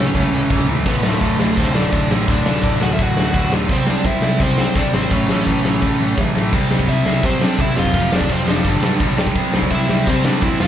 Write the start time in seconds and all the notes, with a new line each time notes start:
Already playing: C#2 A2 E3 A3 C#4 C#5
0.14 C#2 A2 E3 A3, kick, snare
0.31 C#2 A2 E3 A3
0.50 C#2 A2 E3 A3, kick, mid tom
0.68 C#2 A2 E3 A3, floor tom
0.85 D1 D2 A2 D3 B3 B4, kick, crash
1.03 D2 A2 D3 A3 A4, snare
1.21 D1 D2 A2 D3, kick, open hi-hat
1.38 D1 D2 A2 D3, snare
1.57 D1 D2 A2 D3 C4 C5, kick, open hi-hat
1.74 D2 A2 D3 D4 D5, snare
1.91 D1 D2 A2 D3, kick, open hi-hat
2.10 A1 D2 A2 D3, snare
2.28 D1 D2 A2 D3 D4 D5, kick, open hi-hat
2.45 D1 D2 A2 D3, snare
2.63 D1 D2 A2 D3, kick, open hi-hat
2.80 D1 D2 A2 D3 F#4 F#5, snare
2.93 E5
2.98 D1 D2 A2 D3, kick, open hi-hat
3.02 F#4 F#5
3.16 D1 D2 A2 D3, snare
3.33 D1 D2 A2 D3, kick, open hi-hat
3.50 D1 D2 A2 D3, snare
3.68 C2 C3 G3 C4, kick, open hi-hat
3.73 C5
3.86 C3 G3 C4 D4, snare
3.91 D5
4.04 C2 C3 G3 C4 E4 E5, kick, open hi-hat
4.21 C2 C3 G3 C4, snare
4.39 C2 C3 G3 C4 C5, kick, open hi-hat
4.56 C3 G3 C4, snare
4.75 C2 C3 G3 C4 D4 D5, kick, open hi-hat
4.92 G#1 C3 G3 C4, snare
4.97 C5
5.10 A1 A2 E3 A3 C#4 C#5, kick, open hi-hat
5.27 A1 A2 E3 A3, snare
5.46 A1 A2 E3 A3, kick, open hi-hat
5.63 A1 A2 E3 A3, snare
5.81 A1 A2 E3 A3, kick, snare
5.99 A1 A2 E3 A3
6.17 A1 A2 E3 A3, kick, snare
6.35 A1 A2 E3 A3, snare
6.52 C2 C3 G3 C4, kick, crash
6.70 C2 C3 G3 C4, snare
6.79 kick
6.88 C2 C3 G3 C4 E4 E5, kick, crash
7.05 C2 C3 G3 C4, snare
7.23 C3 G3 C4 C5, kick, crash
7.40 C3 G3 C4 D4 D5, snare
7.58 C2 C3 G3 C4 E4 E5, kick, crash
7.76 F1 F2 C3 F3 F4 F5, snare
7.85 kick
7.93 F1 F2 C3 F3, kick, crash
8.11 F1 F2 C3 F3 D4, snare
8.15 D5
8.21 kick
8.29 F1 F2 C3 F3 C4 C5, kick, crash
8.46 F1 F2 C3 F3 D4, snare
8.50 D5
8.64 G1 G2 D3 G3, kick, crash
8.82 G2 D3 G3, snare
9.00 B1 G2 D3 G3, kick, crash
9.18 G2 D3 G3, snare
9.27 kick
9.35 C2 C3 G3 C4, kick, crash
9.53 C2 C3 G3 C4, snare
9.62 kick
9.71 C2 C3 G3 C4 E4 E5, kick, crash
9.89 C2 C3 G3 C4, snare
10.06 C3 G3 C4 C5, kick, crash
10.24 C3 G3 C4 D4 D5, snare
10.42 E1 C3 G3 C4 E4 E5, kick, crash
10.60 F1 F2 C3 F3 F4 F5, snare